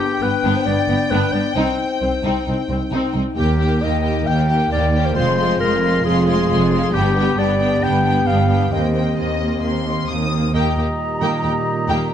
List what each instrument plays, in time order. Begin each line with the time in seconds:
Already playing: french horn section B3 D4, clarinet G4, violin section G5
0.21 double bass section G1, cello section G2, viola section B3, violin section B3, clarinet B4
0.44 double bass section G1, cello section G2, viola section B3, violin section D4
0.56 clarinet C5
0.66 double bass section G1, cello section G2, viola section B3, violin section D4, clarinet D5
0.88 double bass section G1, cello section G2, violin section B3, viola section B3
1.10 double bass section G1, cello section G2, viola section B3, violin section D4, clarinet B4
1.33 double bass section G1, cello section G2, viola section B3, violin section D4, clarinet D5
1.55 double bass section C2, cello section C2, french horn section C4 D#4, viola section C4, violin section D#4, clarinet C5
2.00 cello section C2, double bass section C2, violin section C4, viola section C4
2.23 cello section C2, double bass section C2, viola section C4, violin section D#4
2.46 cello section C2, double bass section C2, viola section C4, violin section D#4
2.68 cello section C2, double bass section C2, violin section C4, viola section C4
2.91 double bass section C2, cello section C2, viola section C4, violin section D#4
3.14 cello section C2, double bass section C2, viola section C4, violin section D#4
3.36 double bass section D#2, cello section D#2, viola section A#3, french horn section A#3, violin section G4 G5, clarinet G4
3.59 viola section A#3, violin section G4 G5
3.81 double bass section D#2, cello section D#2, viola section A#3, violin section G4 G5, clarinet D#5
4.03 viola section A#3, violin section G4 G5
4.26 cello section D#2, double bass section D#2, viola section A#3, violin section G4 G5, clarinet G5
4.48 viola section A#3, violin section G4 G5
4.71 double bass section D#2, cello section D#2, viola section A#3, violin section G4 G5, clarinet D5
4.93 viola section A#3, violin section G4 G5
5.06 clarinet C5
5.15 double bass section F1, cello section F2, viola section G#3, french horn section C4 F4, violin section F4 C6, clarinet C5
5.38 viola section G#3, violin section F4 C6
5.60 double bass section F1, cello section F2, viola section G#3, violin section F4 C6, clarinet A#4
5.83 viola section G#3, violin section F4 C6
6.05 double bass section F1, cello section F2, viola section G#3, violin section F4 C6, clarinet G#4
6.27 viola section G#3, violin section F4 C6
6.50 double bass section F1, cello section F2, viola section G#3, violin section F4 C6
6.72 viola section G#3, violin section F4 C6
6.93 double bass section G1, cello section G2, french horn section B3 G4, viola section B3, violin section D4 G5, clarinet G4
7.14 viola section B3, violin section D4 G5
7.35 double bass section G1, cello section G2, viola section B3, violin section D4 G5, clarinet D5
7.58 viola section B3, violin section D4 G5
7.80 double bass section G1, cello section G2, viola section B3, violin section D4 G5, clarinet G5
8.03 viola section B3, violin section D4 G5
8.25 double bass section G1, cello section G2, viola section B3, violin section D4 G5, clarinet F5
8.49 viola section B3, violin section D4 G5
8.71 double bass section D#2, cello section D#2, viola section A#3, violin section C4 G5, french horn section C4, clarinet D#5
8.93 viola section A#3, violin section C4 G5
9.17 double bass section D#2, cello section D#2, viola section A#3, violin section C4 D#5
9.40 viola section A#3, violin section C4
9.62 double bass section D#2, cello section D#2, viola section A#3, violin section C4 C6
9.86 viola section A#3, violin section C4
10.08 cello section D#2, double bass section D#2, viola section A#3, violin section C4 D#6
10.31 viola section A#3, violin section C4
10.54 double bass section D#2, cello section D#2, trombone section A#2 D#3, french horn section G3 G4, viola section A#3, violin section G4 G5, clarinet G4, oboe D#5, flute section A#5
10.77 cello section D#2, viola section A#3, violin section G4 G5
11.21 cello section D#2, viola section A#3, violin section G4 G5
11.43 cello section D#2, viola section A#3, violin section G4 G5
11.88 cello section D#2, viola section A#3, violin section G4 G5